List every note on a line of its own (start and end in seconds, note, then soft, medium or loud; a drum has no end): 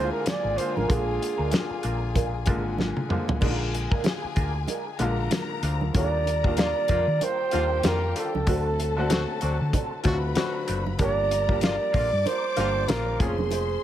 0.00 0.58 D3 medium
0.00 3.07 D3 medium
0.00 0.58 G#3 medium
0.00 0.60 A#3 medium
0.00 3.07 A#3 medium
0.00 3.45 E4 medium
0.00 0.03 F4 medium
0.00 3.07 F4 medium
0.00 0.48 F4 medium
0.00 3.39 G#4 medium
0.00 0.10 A#4 medium
0.00 0.12 C5 loud
0.00 3.39 G#5 medium
0.12 0.29 A#4 loud
0.12 muted clean electric guitar stroke soft
0.24 0.59 D5 loud
0.24 muted clean electric guitar stroke soft
0.24 muted fingered electric bass stroke soft
0.24 snare loud
0.24 closed hi-hat loud
0.24 high conga medium
0.43 0.56 G#1 medium
0.43 muted clean electric guitar stroke soft
0.56 0.83 D3 medium
0.56 0.76 G#3 medium
0.56 0.83 G#3 medium
0.56 0.83 A#3 medium
0.56 0.75 D4 medium
0.56 0.74 F4 medium
0.56 0.74 C5 medium
0.56 0.78 C5 loud
0.56 closed hi-hat medium
0.61 0.84 F4 medium
0.75 0.88 A1 medium
0.75 0.92 A#4 medium
0.75 muted clean electric guitar stroke soft
0.75 high conga medium
0.88 1.18 A#1 loud
0.88 1.82 D3 medium
0.88 1.08 G#3 medium
0.88 1.82 G#3 medium
0.88 1.83 A#3 medium
0.88 1.06 D4 medium
0.88 1.05 F4 medium
0.88 1.83 F4 medium
0.88 1.54 G#4 medium
0.88 1.05 A#4 medium
0.88 kick loud
0.88 closed hi-hat medium
0.88 muted conga medium
1.06 muted clean electric guitar stroke soft
1.19 muted clean electric guitar stroke soft
1.19 closed hi-hat medium
1.38 1.51 D2 medium
1.38 1.50 G#3 soft
1.38 1.50 D4 soft
1.38 1.50 F4 medium
1.38 1.50 A#4 medium
1.51 muted clean electric guitar stroke soft
1.51 snare loud
1.51 closed hi-hat medium
1.51 high conga medium
1.70 muted clean electric guitar stroke soft
1.70 muted fingered electric bass stroke soft
1.83 2.49 A#1 medium
1.83 2.03 G#3 medium
1.83 2.02 D4 medium
1.83 2.01 F4 medium
1.83 2.00 A#4 medium
1.83 closed hi-hat medium
2.01 muted clean electric guitar stroke soft
2.14 2.34 G#3 medium
2.14 2.33 D4 medium
2.14 2.32 F4 medium
2.14 2.31 A#4 medium
2.14 kick medium
2.14 closed hi-hat medium
2.14 muted conga soft
2.33 muted clean electric guitar stroke soft
2.46 2.92 G#1 medium
2.46 2.96 D3 medium
2.46 2.62 G#3 medium
2.46 2.96 G#3 medium
2.46 2.96 A#3 medium
2.46 2.62 D4 medium
2.46 2.63 F4 medium
2.46 2.97 F4 medium
2.46 2.63 A#4 medium
2.46 kick loud
2.46 closed hi-hat medium
2.46 muted conga soft
2.46 low conga medium
2.65 muted clean electric guitar stroke soft
2.78 muted clean electric guitar stroke soft
2.78 snare medium
2.78 high conga medium
2.96 muted clean electric guitar stroke soft
2.96 high tom medium
3.09 3.34 D3 medium
3.09 3.29 G#3 medium
3.09 3.35 G#3 medium
3.09 3.35 A#3 medium
3.09 3.28 D4 medium
3.09 3.27 F4 medium
3.09 3.36 F4 medium
3.09 3.28 C5 medium
3.09 mid tom medium
3.28 floor tom loud
3.28 high conga medium
3.41 3.86 A#1 loud
3.41 4.34 D3 medium
3.41 3.61 G#3 medium
3.41 4.35 G#3 medium
3.41 4.35 A#3 medium
3.41 3.60 D4 medium
3.41 3.51 D#4 medium
3.41 3.60 F4 medium
3.41 4.98 G#4 medium
3.41 3.59 A#4 medium
3.41 4.98 G#5 medium
3.41 kick loud
3.41 crash loud
3.41 muted conga medium
3.50 4.39 F4 medium
3.60 muted clean electric guitar stroke medium
3.73 muted clean electric guitar stroke soft
3.73 closed hi-hat medium
3.91 4.03 G#3 medium
3.91 4.03 D4 medium
3.91 4.03 F4 medium
3.91 4.02 A#4 medium
3.91 kick loud
4.04 muted clean electric guitar stroke soft
4.04 snare loud
4.04 closed hi-hat medium
4.04 high conga medium
4.22 muted clean electric guitar stroke medium
4.22 muted fingered electric bass stroke soft
4.36 4.65 D2 medium
4.36 4.55 G#3 medium
4.36 4.55 D4 medium
4.36 4.54 F4 medium
4.36 4.53 A#4 medium
4.36 kick medium
4.36 closed hi-hat medium
4.55 muted clean electric guitar stroke soft
4.68 4.87 G#3 medium
4.68 4.87 D4 medium
4.68 4.86 F4 medium
4.68 4.85 A#4 medium
4.68 closed hi-hat medium
4.68 muted conga medium
4.86 muted clean electric guitar stroke soft
4.99 5.28 A#1 medium
4.99 5.70 D3 loud
4.99 5.70 G#3 medium
4.99 5.15 G#3 medium
4.99 5.71 A#3 medium
4.99 5.15 D4 medium
4.99 5.15 F4 medium
4.99 5.71 F4 loud
4.99 5.92 A#4 medium
4.99 5.16 A#4 medium
4.99 5.93 A#5 loud
4.99 closed hi-hat medium
4.99 muted conga soft
5.31 muted clean electric guitar stroke soft
5.31 snare loud
5.31 closed hi-hat loud
5.31 high conga medium
5.50 muted clean electric guitar stroke soft
5.63 5.91 D2 medium
5.63 5.82 G#3 medium
5.63 5.82 D4 medium
5.63 5.82 F4 medium
5.63 5.82 C5 medium
5.63 closed hi-hat medium
5.81 muted clean electric guitar stroke soft
5.81 high conga medium
5.94 6.72 D#2 loud
5.94 6.30 D#3 medium
5.94 6.30 G3 medium
5.94 6.17 G3 medium
5.94 6.30 A#3 medium
5.94 6.14 D4 medium
5.94 6.31 D4 medium
5.94 6.14 F4 medium
5.94 6.31 F4 medium
5.94 7.19 A#4 medium
5.94 6.13 A#4 medium
5.94 6.54 D5 loud
5.94 7.18 A#5 medium
5.94 kick loud
5.94 closed hi-hat medium
5.94 muted conga medium
6.14 muted clean electric guitar stroke soft
6.25 muted clean electric guitar stroke soft
6.25 closed hi-hat medium
6.25 muted conga soft
6.44 7.23 D#3 medium
6.44 7.23 G3 medium
6.44 6.56 G3 soft
6.44 7.23 A#3 medium
6.44 6.56 D4 soft
6.44 7.24 D4 medium
6.44 6.56 F4 soft
6.44 7.24 F4 medium
6.44 6.55 A#4 soft
6.44 kick loud
6.57 6.69 D3 medium
6.57 6.69 A#3 medium
6.57 6.69 F4 medium
6.57 7.25 D5 loud
6.57 muted clean electric guitar stroke soft
6.57 snare loud
6.57 closed hi-hat medium
6.57 high conga medium
6.76 muted clean electric guitar stroke soft
6.88 7.06 F2 medium
6.88 7.05 D3 medium
6.88 7.08 G3 medium
6.88 7.05 A#3 medium
6.88 7.08 D4 medium
6.88 7.05 F4 medium
6.88 7.08 F4 medium
6.88 7.07 A#4 medium
6.88 kick medium
6.88 closed hi-hat medium
6.88 low conga medium
7.07 7.19 D#3 medium
7.07 muted clean electric guitar stroke soft
7.21 7.40 G3 medium
7.21 7.40 D4 medium
7.21 7.39 F4 medium
7.21 8.45 G4 medium
7.21 7.38 A#4 medium
7.21 7.89 C5 loud
7.21 8.45 G5 medium
7.21 closed hi-hat medium
7.21 muted conga medium
7.40 muted clean electric guitar stroke soft
7.51 7.81 D#2 medium
7.51 7.63 D3 medium
7.51 8.22 D#3 medium
7.51 7.67 G3 medium
7.51 8.23 G3 medium
7.51 7.64 A#3 medium
7.51 8.23 A#3 medium
7.51 7.68 D4 medium
7.51 8.24 D4 medium
7.51 7.64 F4 loud
7.51 7.68 F4 medium
7.51 8.24 F4 medium
7.51 7.68 A#4 medium
7.51 closed hi-hat medium
7.51 muted conga soft
7.71 muted clean electric guitar stroke soft
7.83 8.12 F2 medium
7.83 8.31 D3 medium
7.83 8.31 A#3 medium
7.83 8.31 F4 medium
7.83 muted clean electric guitar stroke soft
7.83 snare loud
7.83 closed hi-hat loud
7.83 high conga medium
7.88 8.17 A#4 medium
8.02 muted clean electric guitar stroke soft
8.16 8.34 G3 medium
8.16 8.34 D4 medium
8.16 8.34 F4 medium
8.16 9.39 A4 medium
8.16 8.34 C5 medium
8.16 closed hi-hat medium
8.34 8.46 C#2 medium
8.34 muted clean electric guitar stroke soft
8.34 high conga medium
8.46 9.24 D2 loud
8.46 8.82 D3 medium
8.46 8.66 F#3 medium
8.46 8.82 F#3 medium
8.46 8.82 A3 medium
8.46 8.66 C4 medium
8.46 8.83 C4 medium
8.46 8.65 D4 medium
8.46 8.83 F#4 medium
8.46 10.01 A4 medium
8.46 8.64 A4 medium
8.46 10.01 A5 medium
8.46 kick loud
8.46 closed hi-hat medium
8.46 muted conga soft
8.66 muted clean electric guitar stroke soft
8.79 muted clean electric guitar stroke soft
8.79 closed hi-hat medium
8.79 muted conga soft
8.96 9.75 D3 medium
8.96 9.76 F#3 medium
8.96 9.09 F#3 medium
8.96 9.76 A3 medium
8.96 9.08 C4 medium
8.96 9.76 C4 medium
8.96 9.08 D4 medium
8.96 9.77 F#4 loud
8.96 9.08 A4 medium
9.09 9.21 D3 medium
9.09 9.21 C4 medium
9.09 9.21 F#4 loud
9.09 muted clean electric guitar stroke soft
9.09 snare loud
9.09 closed hi-hat loud
9.09 high conga medium
9.29 muted clean electric guitar stroke soft
9.40 9.58 D2 medium
9.40 9.57 D3 medium
9.40 9.60 F#3 medium
9.40 9.57 C4 medium
9.40 9.60 C4 medium
9.40 9.60 D4 loud
9.40 9.56 F#4 medium
9.40 9.59 A4 medium
9.40 closed hi-hat medium
9.60 9.72 D3 medium
9.60 muted clean electric guitar stroke soft
9.73 9.92 F#3 medium
9.73 9.92 C4 medium
9.73 9.91 D4 medium
9.73 9.91 A4 medium
9.73 kick medium
9.73 closed hi-hat medium
9.73 muted conga medium
9.73 low conga medium
9.92 muted clean electric guitar stroke soft
10.03 10.33 D2 medium
10.03 10.74 D3 medium
10.03 10.16 D3 medium
10.03 10.19 F#3 medium
10.03 10.75 F#3 medium
10.03 10.75 A3 medium
10.03 10.16 C4 medium
10.03 10.20 C4 medium
10.03 10.75 C4 medium
10.03 10.20 D4 medium
10.03 10.13 F4 medium
10.03 10.16 F#4 medium
10.03 10.20 A4 medium
10.03 10.98 B4 medium
10.03 10.98 B5 medium
10.03 kick loud
10.03 snare soft
10.03 closed hi-hat medium
10.03 muted conga soft
10.03 low conga medium
10.13 10.79 F#4 loud
10.23 muted clean electric guitar stroke medium
10.35 10.83 D3 medium
10.35 10.83 C4 medium
10.35 10.83 F#4 loud
10.35 muted clean electric guitar stroke soft
10.35 snare loud
10.35 closed hi-hat medium
10.35 high conga medium
10.54 muted clean electric guitar stroke soft
10.67 10.96 F#1 medium
10.67 10.86 F#3 medium
10.67 10.86 C4 medium
10.67 10.86 D4 medium
10.67 10.86 B4 medium
10.67 closed hi-hat medium
10.86 muted clean electric guitar stroke soft
10.86 high conga medium
10.98 11.77 G1 loud
10.98 11.34 F3 medium
10.98 11.34 G3 medium
10.98 11.18 A#3 medium
10.98 11.35 A#3 medium
10.98 11.17 D4 medium
10.98 11.35 D4 medium
10.98 11.17 F4 medium
10.98 11.35 G4 medium
10.98 11.16 A#4 medium
10.98 11.93 A#4 medium
10.98 11.93 A#5 medium
10.98 kick loud
10.98 closed hi-hat medium
10.98 muted conga medium
11.02 11.60 D5 loud
11.17 muted clean electric guitar stroke medium
11.30 muted clean electric guitar stroke soft
11.30 closed hi-hat medium
11.30 muted conga soft
11.49 12.27 F3 medium
11.49 12.27 G3 medium
11.49 12.28 A#3 medium
11.49 11.60 A#3 medium
11.49 11.60 D4 soft
11.49 12.28 D4 medium
11.49 11.60 F4 medium
11.49 12.29 G4 medium
11.49 11.60 A#4 medium
11.49 kick loud
11.61 11.74 D3 medium
11.61 11.74 A#3 medium
11.61 11.74 F4 medium
11.61 12.28 D5 loud
11.61 muted clean electric guitar stroke soft
11.61 snare loud
11.61 closed hi-hat loud
11.61 high conga medium
11.80 muted clean electric guitar stroke soft
11.92 12.10 A#1 medium
11.92 12.08 D3 medium
11.92 12.12 A#3 medium
11.92 12.09 A#3 medium
11.92 12.11 D4 medium
11.92 12.08 F4 medium
11.92 12.11 F4 medium
11.92 12.10 A#4 loud
11.92 13.18 D5 medium
11.92 13.18 D6 loud
11.92 kick medium
11.92 open hi-hat soft
11.92 low conga medium
12.11 12.24 G2 medium
12.11 muted clean electric guitar stroke soft
12.24 12.43 A#3 medium
12.24 12.43 D4 medium
12.24 12.42 F4 medium
12.24 12.42 A#4 medium
12.24 12.90 C5 loud
12.24 closed hi-hat medium
12.24 muted conga medium
12.43 muted clean electric guitar stroke soft
12.56 12.85 G1 medium
12.56 12.68 D3 medium
12.56 13.21 D3 medium
12.56 13.18 F3 medium
12.56 13.20 G3 medium
12.56 12.68 A#3 medium
12.56 12.71 A#3 medium
12.56 13.19 A#3 medium
12.56 12.72 D4 medium
12.56 12.68 F4 loud
12.56 12.72 F4 medium
12.56 13.21 G4 medium
12.56 12.72 A#4 medium
12.56 closed hi-hat medium
12.56 muted conga soft
12.74 muted clean electric guitar stroke soft
12.87 13.16 A#1 medium
12.87 13.35 C#3 medium
12.87 13.35 C4 medium
12.87 13.35 F4 loud
12.87 13.22 A#4 loud
12.87 muted clean electric guitar stroke soft
12.87 snare loud
12.87 closed hi-hat loud
12.87 high conga medium
13.06 muted clean electric guitar stroke soft
13.20 13.76 F1 loud
13.20 13.83 F3 medium
13.20 13.38 G#3 medium
13.20 13.83 A#3 medium
13.20 13.84 C4 medium
13.20 13.39 C#4 medium
13.20 13.84 C#4 medium
13.20 13.38 F4 medium
13.20 13.84 G#4 medium
13.20 13.84 C5 medium
13.20 13.38 C#5 medium
13.20 13.84 C6 medium
13.20 kick loud
13.20 closed hi-hat medium
13.38 muted clean electric guitar stroke soft
13.38 high conga medium
13.51 13.70 G#3 medium
13.51 13.69 C#4 medium
13.51 13.69 F4 medium
13.51 13.68 C5 loud
13.51 closed hi-hat medium
13.51 muted conga medium
13.69 muted clean electric guitar stroke medium